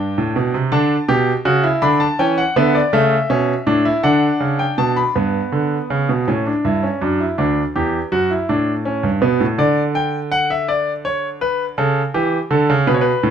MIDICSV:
0, 0, Header, 1, 2, 480
1, 0, Start_track
1, 0, Tempo, 733496
1, 471, Time_signature, 6, 3, 24, 8
1, 2395, Tempo, 743494
1, 5275, Tempo, 730816
1, 8679, End_track
2, 0, Start_track
2, 0, Title_t, "Grand piano"
2, 0, Program_c, 0, 0
2, 0, Note_on_c, 0, 43, 59
2, 0, Note_on_c, 0, 62, 62
2, 0, Note_on_c, 0, 79, 75
2, 107, Note_off_c, 0, 43, 0
2, 117, Note_on_c, 0, 45, 64
2, 231, Note_off_c, 0, 45, 0
2, 235, Note_on_c, 0, 47, 68
2, 349, Note_off_c, 0, 47, 0
2, 354, Note_on_c, 0, 48, 63
2, 452, Note_off_c, 0, 79, 0
2, 453, Note_off_c, 0, 62, 0
2, 469, Note_off_c, 0, 48, 0
2, 470, Note_on_c, 0, 62, 86
2, 470, Note_on_c, 0, 81, 71
2, 471, Note_on_c, 0, 50, 69
2, 619, Note_off_c, 0, 62, 0
2, 620, Note_off_c, 0, 50, 0
2, 710, Note_on_c, 0, 47, 69
2, 710, Note_on_c, 0, 67, 86
2, 859, Note_off_c, 0, 47, 0
2, 859, Note_off_c, 0, 67, 0
2, 951, Note_on_c, 0, 49, 73
2, 951, Note_on_c, 0, 66, 85
2, 1068, Note_off_c, 0, 66, 0
2, 1070, Note_on_c, 0, 64, 82
2, 1100, Note_off_c, 0, 49, 0
2, 1170, Note_off_c, 0, 81, 0
2, 1187, Note_off_c, 0, 64, 0
2, 1190, Note_on_c, 0, 62, 84
2, 1191, Note_on_c, 0, 50, 71
2, 1191, Note_on_c, 0, 83, 73
2, 1308, Note_off_c, 0, 83, 0
2, 1309, Note_on_c, 0, 81, 72
2, 1339, Note_off_c, 0, 62, 0
2, 1340, Note_off_c, 0, 50, 0
2, 1427, Note_off_c, 0, 81, 0
2, 1434, Note_on_c, 0, 52, 68
2, 1434, Note_on_c, 0, 61, 84
2, 1435, Note_on_c, 0, 79, 72
2, 1550, Note_off_c, 0, 79, 0
2, 1555, Note_on_c, 0, 78, 74
2, 1582, Note_off_c, 0, 52, 0
2, 1583, Note_off_c, 0, 61, 0
2, 1670, Note_off_c, 0, 78, 0
2, 1677, Note_on_c, 0, 50, 73
2, 1677, Note_on_c, 0, 59, 84
2, 1677, Note_on_c, 0, 76, 69
2, 1792, Note_off_c, 0, 76, 0
2, 1798, Note_on_c, 0, 74, 71
2, 1825, Note_off_c, 0, 50, 0
2, 1825, Note_off_c, 0, 59, 0
2, 1912, Note_off_c, 0, 74, 0
2, 1917, Note_on_c, 0, 49, 75
2, 1917, Note_on_c, 0, 76, 72
2, 1918, Note_on_c, 0, 57, 87
2, 2065, Note_off_c, 0, 49, 0
2, 2066, Note_off_c, 0, 57, 0
2, 2158, Note_on_c, 0, 47, 69
2, 2158, Note_on_c, 0, 61, 85
2, 2307, Note_off_c, 0, 47, 0
2, 2307, Note_off_c, 0, 61, 0
2, 2399, Note_on_c, 0, 45, 67
2, 2399, Note_on_c, 0, 62, 84
2, 2514, Note_off_c, 0, 62, 0
2, 2520, Note_on_c, 0, 64, 82
2, 2547, Note_off_c, 0, 45, 0
2, 2618, Note_off_c, 0, 76, 0
2, 2635, Note_off_c, 0, 64, 0
2, 2637, Note_on_c, 0, 50, 66
2, 2637, Note_on_c, 0, 78, 70
2, 2638, Note_on_c, 0, 62, 78
2, 2786, Note_off_c, 0, 50, 0
2, 2875, Note_on_c, 0, 49, 64
2, 2987, Note_off_c, 0, 78, 0
2, 2997, Note_on_c, 0, 79, 69
2, 3026, Note_off_c, 0, 49, 0
2, 3115, Note_off_c, 0, 79, 0
2, 3117, Note_on_c, 0, 47, 67
2, 3118, Note_on_c, 0, 81, 69
2, 3236, Note_off_c, 0, 81, 0
2, 3237, Note_on_c, 0, 83, 67
2, 3268, Note_off_c, 0, 47, 0
2, 3340, Note_off_c, 0, 62, 0
2, 3356, Note_off_c, 0, 83, 0
2, 3360, Note_on_c, 0, 59, 57
2, 3361, Note_on_c, 0, 43, 63
2, 3511, Note_off_c, 0, 43, 0
2, 3598, Note_on_c, 0, 50, 66
2, 3749, Note_off_c, 0, 50, 0
2, 3843, Note_on_c, 0, 49, 68
2, 3959, Note_off_c, 0, 49, 0
2, 3965, Note_on_c, 0, 47, 65
2, 4060, Note_off_c, 0, 59, 0
2, 4080, Note_off_c, 0, 47, 0
2, 4084, Note_on_c, 0, 61, 55
2, 4085, Note_on_c, 0, 45, 65
2, 4199, Note_off_c, 0, 61, 0
2, 4206, Note_on_c, 0, 62, 58
2, 4232, Note_off_c, 0, 45, 0
2, 4319, Note_off_c, 0, 62, 0
2, 4323, Note_on_c, 0, 43, 61
2, 4324, Note_on_c, 0, 64, 58
2, 4438, Note_off_c, 0, 64, 0
2, 4441, Note_on_c, 0, 61, 58
2, 4470, Note_off_c, 0, 43, 0
2, 4557, Note_off_c, 0, 61, 0
2, 4561, Note_on_c, 0, 42, 69
2, 4561, Note_on_c, 0, 62, 61
2, 4676, Note_off_c, 0, 62, 0
2, 4682, Note_on_c, 0, 64, 58
2, 4709, Note_off_c, 0, 42, 0
2, 4797, Note_off_c, 0, 64, 0
2, 4797, Note_on_c, 0, 62, 70
2, 4799, Note_on_c, 0, 38, 59
2, 4946, Note_off_c, 0, 62, 0
2, 4947, Note_off_c, 0, 38, 0
2, 5039, Note_on_c, 0, 67, 69
2, 5040, Note_on_c, 0, 40, 61
2, 5186, Note_off_c, 0, 67, 0
2, 5187, Note_off_c, 0, 40, 0
2, 5274, Note_on_c, 0, 66, 73
2, 5275, Note_on_c, 0, 42, 58
2, 5392, Note_off_c, 0, 66, 0
2, 5397, Note_on_c, 0, 64, 64
2, 5424, Note_off_c, 0, 42, 0
2, 5514, Note_off_c, 0, 64, 0
2, 5518, Note_on_c, 0, 45, 60
2, 5518, Note_on_c, 0, 62, 66
2, 5667, Note_off_c, 0, 62, 0
2, 5756, Note_on_c, 0, 61, 68
2, 5868, Note_off_c, 0, 45, 0
2, 5875, Note_on_c, 0, 43, 67
2, 5906, Note_off_c, 0, 61, 0
2, 5993, Note_off_c, 0, 43, 0
2, 5995, Note_on_c, 0, 47, 65
2, 5995, Note_on_c, 0, 59, 72
2, 6113, Note_off_c, 0, 47, 0
2, 6118, Note_on_c, 0, 45, 64
2, 6145, Note_off_c, 0, 59, 0
2, 6234, Note_off_c, 0, 45, 0
2, 6236, Note_on_c, 0, 50, 70
2, 6238, Note_on_c, 0, 74, 75
2, 6386, Note_off_c, 0, 74, 0
2, 6477, Note_on_c, 0, 79, 78
2, 6626, Note_off_c, 0, 79, 0
2, 6716, Note_on_c, 0, 78, 79
2, 6833, Note_off_c, 0, 78, 0
2, 6840, Note_on_c, 0, 76, 75
2, 6955, Note_off_c, 0, 76, 0
2, 6959, Note_on_c, 0, 74, 75
2, 7106, Note_off_c, 0, 74, 0
2, 7198, Note_on_c, 0, 73, 77
2, 7345, Note_off_c, 0, 73, 0
2, 7437, Note_on_c, 0, 71, 75
2, 7584, Note_off_c, 0, 71, 0
2, 7645, Note_off_c, 0, 50, 0
2, 7677, Note_on_c, 0, 49, 80
2, 7678, Note_on_c, 0, 69, 69
2, 7825, Note_off_c, 0, 49, 0
2, 7826, Note_off_c, 0, 69, 0
2, 7917, Note_on_c, 0, 67, 73
2, 7918, Note_on_c, 0, 52, 81
2, 8066, Note_off_c, 0, 52, 0
2, 8066, Note_off_c, 0, 67, 0
2, 8155, Note_on_c, 0, 50, 84
2, 8155, Note_on_c, 0, 69, 71
2, 8272, Note_off_c, 0, 50, 0
2, 8280, Note_on_c, 0, 49, 82
2, 8304, Note_off_c, 0, 69, 0
2, 8394, Note_off_c, 0, 49, 0
2, 8396, Note_on_c, 0, 47, 80
2, 8396, Note_on_c, 0, 71, 72
2, 8440, Note_off_c, 0, 71, 0
2, 8443, Note_on_c, 0, 73, 60
2, 8487, Note_off_c, 0, 73, 0
2, 8488, Note_on_c, 0, 71, 72
2, 8544, Note_off_c, 0, 47, 0
2, 8633, Note_on_c, 0, 45, 82
2, 8679, Note_off_c, 0, 45, 0
2, 8679, Note_off_c, 0, 71, 0
2, 8679, End_track
0, 0, End_of_file